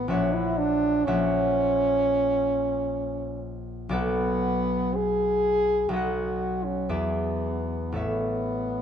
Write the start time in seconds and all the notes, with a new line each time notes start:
Already playing: A1 B3 A5
0.08 A#1 C#4 C#5 E5 F#5
0.34 E4
0.58 D4
1.04 A#1 C#4 C#5 E5 F#5
3.89 B1 B3 A4 D5 F#5
4.95 G#4
5.89 B1 F#4 A4
5.93 D#5 F#5
6.64 C#4
6.89 E2 B3 G#4 D5 E5
7.92 A1 B3 A4 C#5
7.96 E5